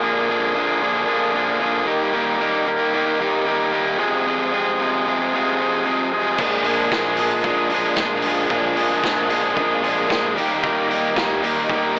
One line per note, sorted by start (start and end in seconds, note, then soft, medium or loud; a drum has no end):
0.00 0.28 A#2 loud
0.00 0.30 D3 loud
0.00 0.29 F3 loud
0.00 0.30 A#3 loud
0.00 0.30 D4 loud
0.00 0.30 G#4 loud
0.00 1.86 A#4 medium
0.00 1.86 F5 medium
0.00 1.86 G#5 medium
0.00 3.98 D6 medium
0.30 0.54 A#2 medium
0.30 0.54 D3 medium
0.30 0.55 F3 medium
0.30 0.56 A#3 medium
0.30 0.56 D4 loud
0.30 0.56 G#4 medium
0.55 0.80 A#2 medium
0.55 0.81 D3 loud
0.55 0.81 F3 loud
0.55 0.82 A#3 loud
0.55 0.82 D4 medium
0.55 0.82 G#4 loud
0.81 1.06 A#2 medium
0.81 1.06 D3 medium
0.81 1.07 F3 loud
0.81 1.06 A#3 medium
0.81 1.07 D4 loud
0.81 1.07 G#4 loud
1.07 1.33 A#2 medium
1.07 1.33 D3 loud
1.07 1.34 F3 medium
1.07 1.34 A#3 loud
1.07 1.35 D4 loud
1.07 1.35 G#4 loud
1.34 1.60 A#2 medium
1.34 1.61 D3 medium
1.34 1.61 F3 medium
1.34 1.61 A#3 medium
1.34 1.61 D4 loud
1.34 1.61 G#4 medium
1.61 1.87 A#2 medium
1.61 1.86 D3 loud
1.61 1.87 F3 medium
1.61 1.86 A#3 loud
1.61 1.87 D4 loud
1.61 1.88 G#4 loud
1.86 2.13 D#3 loud
1.86 2.13 G3 loud
1.86 2.14 A#3 loud
1.86 2.14 D#4 loud
1.86 2.14 G4 loud
1.86 3.99 A#4 medium
1.86 3.99 D#5 medium
1.90 4.00 G5 medium
2.14 2.39 D#3 loud
2.14 2.40 G3 loud
2.14 2.40 A#3 loud
2.14 2.41 D#4 loud
2.14 2.40 G4 loud
2.40 2.66 D#3 medium
2.40 2.66 G3 medium
2.40 2.66 A#3 medium
2.40 2.68 D#4 loud
2.40 2.67 G4 medium
2.67 2.93 D#3 medium
2.67 2.93 G3 medium
2.67 2.94 A#3 loud
2.67 2.95 D#4 medium
2.67 2.94 G4 loud
2.94 3.19 D#3 medium
2.94 3.20 G3 medium
2.94 3.19 A#3 medium
2.94 3.21 D#4 medium
2.94 3.21 G4 medium
3.20 3.44 D#3 loud
3.20 3.46 G3 medium
3.20 3.46 A#3 medium
3.20 3.47 D#4 medium
3.20 3.46 G4 medium
3.46 3.72 D#3 medium
3.46 3.72 G3 medium
3.46 3.72 A#3 medium
3.46 3.72 D#4 loud
3.46 3.73 G4 medium
3.73 3.98 D#3 medium
3.73 3.99 G3 loud
3.73 3.99 A#3 loud
3.73 3.99 D#4 loud
3.73 3.99 G4 medium
3.98 4.25 F2 loud
3.98 4.25 C3 loud
3.98 4.27 F3 loud
3.98 4.27 G#3 loud
3.98 4.27 C4 loud
3.98 4.27 G#4 loud
3.98 6.36 C5 medium
3.98 10.33 F5 medium
3.98 10.33 G#5 medium
3.98 6.37 D#6 medium
4.26 4.51 F2 loud
4.26 4.52 C3 loud
4.26 4.53 F3 loud
4.26 4.53 G#3 loud
4.26 4.53 C4 loud
4.26 4.54 G#4 loud
4.53 4.79 F2 medium
4.53 4.80 C3 medium
4.53 4.81 F3 medium
4.53 4.81 G#3 loud
4.53 4.81 C4 loud
4.53 4.82 G#4 loud
4.80 5.05 F2 medium
4.80 5.05 C3 loud
4.80 5.07 F3 medium
4.80 5.07 G#3 medium
4.80 5.07 C4 loud
4.80 5.08 G#4 loud
5.06 5.32 F2 medium
5.06 5.33 C3 medium
5.06 5.34 F3 medium
5.06 5.34 G#3 medium
5.06 5.34 C4 medium
5.06 5.35 G#4 medium
5.33 5.59 F2 medium
5.33 5.59 C3 loud
5.33 5.60 F3 medium
5.33 5.60 G#3 loud
5.33 5.60 C4 medium
5.33 5.61 G#4 medium
5.60 5.84 F2 medium
5.60 5.85 C3 medium
5.60 5.85 F3 medium
5.60 5.86 G#3 medium
5.60 5.85 C4 medium
5.60 5.86 G#4 loud
5.85 6.11 F2 medium
5.85 6.11 C3 medium
5.85 6.13 F3 medium
5.85 6.12 G#3 medium
5.85 6.12 C4 medium
5.85 6.13 G#4 loud
6.12 6.38 F2 loud
6.12 6.38 C3 loud
6.12 6.39 F3 loud
6.12 6.39 G#3 loud
6.12 6.38 C4 loud
6.12 6.40 G#4 loud
6.38 6.87 A#1 loud
6.38 6.64 A#2 loud
6.38 6.66 D3 loud
6.38 6.65 F3 medium
6.38 6.65 G#3 loud
6.38 6.68 A#3 loud
6.38 6.66 D4 loud
6.38 6.66 G#4 loud
6.38 11.99 A#4 medium
6.38 11.99 D6 medium
6.38 kick loud
6.38 crash medium
6.64 6.91 A#2 medium
6.64 6.92 D3 medium
6.64 6.92 F3 medium
6.64 6.92 G#3 medium
6.64 6.94 A#3 medium
6.64 6.93 D4 medium
6.64 6.93 G#4 medium
6.64 open hi-hat medium
6.91 7.40 A#1 loud
6.91 7.17 A#2 medium
6.91 7.19 D3 medium
6.91 7.17 F3 medium
6.91 7.18 G#3 loud
6.91 7.20 A#3 medium
6.91 7.19 D4 loud
6.91 7.18 G#4 medium
6.91 kick loud
6.91 snare loud
7.17 7.43 A#2 medium
7.17 7.45 D3 loud
7.17 7.44 F3 medium
7.17 7.44 G#3 loud
7.17 7.45 D4 medium
7.17 7.44 G#4 medium
7.17 open hi-hat medium
7.21 7.47 A#3 loud
7.44 7.93 A#1 medium
7.44 7.72 A#2 medium
7.44 7.71 D3 medium
7.44 7.72 F3 medium
7.44 7.73 G#3 loud
7.44 7.72 A#3 medium
7.44 7.74 D4 loud
7.44 7.73 G#4 loud
7.44 kick loud
7.70 7.98 A#2 medium
7.70 7.97 D3 medium
7.70 7.98 F3 medium
7.70 8.00 A#3 medium
7.70 open hi-hat medium
7.74 8.00 G#3 medium
7.74 8.00 D4 loud
7.74 8.00 G#4 loud
7.96 8.45 A#1 loud
7.96 8.25 A#2 medium
7.96 8.25 D3 medium
7.96 8.25 F3 medium
7.96 8.27 A#3 medium
7.96 kick loud
7.96 snare loud
8.01 8.26 G#3 loud
8.01 8.27 D4 medium
8.01 8.26 G#4 loud
8.22 8.51 D3 medium
8.22 8.50 F3 loud
8.22 open hi-hat medium
8.26 8.50 A#2 medium
8.26 8.50 G#3 loud
8.26 8.53 A#3 medium
8.26 8.51 D4 loud
8.26 8.52 G#4 loud
8.50 8.99 A#1 loud
8.50 8.75 A#2 loud
8.50 8.78 D3 loud
8.50 8.75 F3 loud
8.50 8.76 G#3 loud
8.50 8.79 A#3 loud
8.50 8.77 D4 loud
8.50 8.77 G#4 loud
8.50 kick loud
8.76 9.01 A#2 loud
8.76 9.04 D3 medium
8.76 9.03 F3 medium
8.76 9.03 G#3 medium
8.76 9.07 A#3 medium
8.76 9.04 D4 medium
8.76 9.04 G#4 loud
8.76 open hi-hat medium
9.03 9.52 A#1 loud
9.03 9.27 A#2 loud
9.03 9.31 D3 medium
9.03 9.28 F3 medium
9.03 9.28 G#3 medium
9.03 9.28 D4 medium
9.03 9.29 G#4 medium
9.03 kick loud
9.03 snare loud
9.07 9.33 A#3 medium
9.29 9.53 A#2 medium
9.29 9.58 D3 loud
9.29 9.54 F3 medium
9.29 9.54 G#3 loud
9.29 9.55 D4 loud
9.29 9.56 G#4 loud
9.29 open hi-hat medium
9.34 9.59 A#3 medium
9.34 9.60 D4 loud
9.34 9.60 G#4 loud
9.55 10.05 A#1 loud
9.55 9.82 A#2 loud
9.55 9.82 F3 medium
9.55 9.82 G#3 loud
9.55 9.83 D4 loud
9.55 9.83 G#4 loud
9.55 kick loud
9.59 9.83 A#2 medium
9.59 9.83 D3 medium
9.59 9.84 F3 medium
9.59 9.85 A#3 medium
9.59 9.85 D4 loud
9.59 9.86 G#4 medium
9.83 10.07 A#2 medium
9.83 10.12 D3 medium
9.83 10.07 F3 medium
9.83 10.08 G#3 medium
9.83 10.13 A#3 loud
9.83 10.08 D4 medium
9.83 10.09 G#4 medium
9.83 open hi-hat medium
10.08 10.35 A#1 loud
10.08 10.35 A#2 medium
10.08 10.35 F3 medium
10.08 10.35 G#3 medium
10.08 10.35 D4 medium
10.08 10.36 G#4 medium
10.08 kick loud
10.08 snare loud
10.13 10.37 D3 medium
10.13 10.38 F3 loud
10.13 10.38 A#3 loud
10.13 10.38 D4 loud
10.13 10.38 G#4 loud
10.35 11.09 D#2 loud
10.35 10.60 D#3 loud
10.35 10.61 G3 loud
10.35 10.61 A#3 loud
10.35 10.62 D#4 loud
10.35 10.62 G4 loud
10.35 11.99 D#5 medium
10.35 11.99 G5 medium
10.35 open hi-hat medium
10.61 10.87 D#3 loud
10.61 10.87 G3 loud
10.61 10.88 A#3 loud
10.61 10.89 D#4 loud
10.61 10.89 G4 loud
10.61 kick loud
10.66 10.91 A#3 loud
10.66 10.92 D#4 loud
10.66 10.92 G4 loud
10.88 11.14 D#3 medium
10.88 11.14 G3 loud
10.88 11.15 A#3 medium
10.88 11.16 D#4 loud
10.88 11.16 G4 loud
10.88 open hi-hat medium
11.15 11.65 D#2 loud
11.15 11.42 D#3 medium
11.15 11.42 G3 medium
11.15 11.43 A#3 loud
11.15 11.44 D#4 medium
11.15 11.44 G4 medium
11.15 kick loud
11.15 snare loud
11.43 11.68 D#3 loud
11.43 11.68 G3 medium
11.43 11.69 A#3 medium
11.43 11.70 D#4 medium
11.43 11.69 G4 loud
11.43 open hi-hat medium
11.69 11.99 D#2 medium
11.69 11.94 D#3 loud
11.69 11.94 G3 loud
11.69 11.95 A#3 medium
11.69 11.96 D#4 loud
11.69 11.96 G4 medium
11.69 kick loud
11.96 11.99 D#3 medium
11.96 11.99 G3 medium
11.96 11.99 A#3 loud